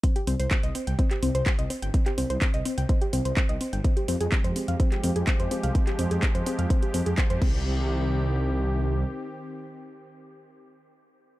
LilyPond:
<<
  \new Staff \with { instrumentName = "Synth arpeggio sound" } { \time 4/4 \key c \minor \tempo 4 = 126 <c' c''>16 <g' g''>16 <c' c''>16 <c'' c'''>16 c'16 <ees'' ees'''>16 <c' c''>16 <g'' g'''>16 <c' c''>16 <g' g''>16 <c' c''>16 <c'' c'''>16 c'16 <ees'' ees'''>16 <c' c''>16 <g'' g'''>16 | <c' c''>16 <g' g''>16 <c' c''>16 <c'' c'''>16 <c' c''>16 <ees'' ees'''>16 <c' c''>16 <g'' g'''>16 <c' c''>16 <g' g''>16 <c' c''>16 <c'' c'''>16 <c' c''>16 <ees'' ees'''>16 <c' c''>16 <g'' g'''>16 | <c' c''>16 <g' g''>16 <c' c''>16 <aes' aes''>16 c'16 <c'' c'''>16 <c' c''>16 <f'' f'''>16 <c' c''>16 <g' g''>16 <c' c''>16 <aes' aes''>16 <c' c''>16 <c'' c'''>16 <c' c''>16 <f'' f'''>16 | <c' c''>16 <g' g''>16 <c' c''>16 <aes' aes''>16 <c' c''>16 <c'' c'''>16 <c' c''>16 <f'' f'''>16 <c' c''>16 <g' g''>16 <c' c''>16 <aes' aes''>16 <c' c''>16 <c'' c'''>16 c'8~ |
c'8 r2. r8 | r1 | }
  \new Staff \with { instrumentName = "Analog synth pad" } { \time 4/4 \key c \minor r1 | r1 | <f aes g'>1~ | <f aes g'>2.~ <f aes g'>8 <ees c' g'>8~ |
<ees c' g'>1~ | <ees c' g'>1 | }
  \new Staff \with { instrumentName = "Detuned saw bass" } { \clef bass \time 4/4 \key c \minor r8 c,16 c,16 r16 c,16 r16 c,16 r8 c,16 c,16 r16 c,16 r16 g,,16 | r8 c,16 c,16 r16 c,16 r16 c,16 r8 c,16 c,16 r16 c,16 r16 g,,16 | r8 f,16 f,16 r16 f,16 r16 f,16 r8 f,16 f,16 r16 f,16 r16 c,16 | r8 f,16 f,16 r16 f,16 r16 f,16 r8 f,16 f,16 r16 f,16 c,8~ |
c,2. r4 | r1 | }
  \new DrumStaff \with { instrumentName = "Drums" } \drummode { \time 4/4 <hh bd>16 hh16 hho16 hh16 <hc hh bd>16 hh16 hho16 hh16 <hh bd>16 <hc hh>16 hho16 hh16 <hc hh bd>16 hh16 hho16 hh16 | <hh bd>16 <hc hh>16 hho16 hh16 <hc hh bd>16 hh16 hho16 hh16 <hh bd>16 hh16 hho16 hh16 <hc hh bd>16 hh16 hho16 hh16 | <hh bd>16 hh16 hho16 hh16 <hc hh bd>16 hh16 hho16 hh16 <hh bd>16 <hc hh>16 hho16 hh16 <hc hh bd>16 hh16 hho16 hh16 | <hh bd>16 <hc hh>16 hho16 hh16 <hc hh bd>16 hh16 hho16 hh16 <hh bd>16 hh16 hho16 hh16 <hc hh bd>16 hh16 <cymc bd>8 |
r4 r4 r4 r4 | r4 r4 r4 r4 | }
>>